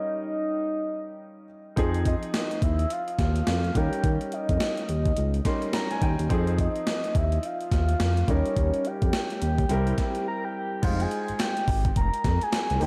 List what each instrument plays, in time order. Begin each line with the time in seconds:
Already playing: grand piano G3 C#4 D#4 A#4, soft synth lead D#5
1.76 analog synth bass F2, grand piano F3 C4 D#4 G#4, kick, closed hi-hat
1.94 closed hi-hat
2.05 soft synth lead D#5, kick, closed hi-hat
2.23 closed hi-hat
2.34 snare, closed hi-hat
2.51 closed hi-hat
2.62 analog synth bass D#2, soft synth lead E5, kick, closed hi-hat
2.79 closed hi-hat
2.90 soft synth lead F5, closed hi-hat
3.08 closed hi-hat
3.19 analog synth bass D#2, kick, snare, closed hi-hat
3.36 closed hi-hat
3.47 analog synth bass F2, snare, closed hi-hat
3.64 closed hi-hat
3.75 analog synth bass D#2, grand piano G3 C#4 D#4 A#4, soft synth lead G5, kick, closed hi-hat
3.93 closed hi-hat
4.04 analog synth bass D#2, kick, closed hi-hat
4.21 closed hi-hat
4.32 soft synth lead D#5, closed hi-hat
4.49 analog synth bass F2, kick, closed hi-hat
4.60 snare, closed hi-hat
4.77 closed hi-hat
4.89 analog synth bass D#2, closed hi-hat
5.05 kick, closed hi-hat
5.17 analog synth bass C#2, closed hi-hat
5.34 closed hi-hat
5.45 grand piano G3 C#4 D#4 A#4 C6, kick, snare, closed hi-hat
5.62 closed hi-hat
5.73 grand piano A#5, snare, closed hi-hat
5.91 grand piano G#5, closed hi-hat
6.02 analog synth bass D#2, grand piano G5, kick, closed hi-hat
6.19 analog synth bass D#2, closed hi-hat
6.29 analog synth bass F2, grand piano F3 C4 D#4 G#4, kick, closed hi-hat
6.47 closed hi-hat
6.59 soft synth lead D#5, kick, closed hi-hat
6.76 closed hi-hat
6.87 snare, closed hi-hat
7.04 closed hi-hat
7.15 analog synth bass D#2, soft synth lead E5, kick, closed hi-hat
7.32 closed hi-hat
7.43 soft synth lead F5, closed hi-hat
7.61 closed hi-hat
7.72 analog synth bass D#2, kick, snare, closed hi-hat
7.89 closed hi-hat
8.00 analog synth bass F2, snare, closed hi-hat
8.17 closed hi-hat
8.28 analog synth bass D#2, grand piano G3 C#4 D#4 A#4, soft synth lead C#5, kick, closed hi-hat
8.46 closed hi-hat
8.57 analog synth bass D#2, kick, closed hi-hat
8.74 closed hi-hat
8.85 soft synth lead G5, closed hi-hat
9.02 analog synth bass F2, kick, closed hi-hat
9.13 snare, closed hi-hat
9.30 closed hi-hat
9.42 analog synth bass D#2, closed hi-hat
9.58 kick, closed hi-hat
9.69 analog synth bass C2, grand piano G3 C4 E4 A#4, closed hi-hat
9.87 closed hi-hat
9.98 kick, snare, closed hi-hat
10.15 closed hi-hat
10.28 soft synth lead A#5
10.45 soft synth lead G5
10.82 analog synth bass F1, grand piano G#3 D#4 F4 C5, soft synth lead F5, kick, closed hi-hat, crash
11.00 soft synth lead G#5, closed hi-hat
11.11 closed hi-hat
11.28 analog synth bass G#1, closed hi-hat
11.40 soft synth lead G5, snare, clap, closed hi-hat
11.57 closed hi-hat
11.68 analog synth bass G#1, kick, open hi-hat
11.85 kick, closed hi-hat
11.96 analog synth bass F1, soft synth lead A#5, kick, closed hi-hat
12.14 closed hi-hat
12.24 analog synth bass F2, kick, snare, closed hi-hat
12.41 soft synth lead G#5, closed hi-hat
12.53 snare, clap, closed hi-hat
12.70 analog synth bass C2, closed hi-hat
12.80 analog synth bass D#2, grand piano A#3 D#4 G4 C5, soft synth lead G5, open hi-hat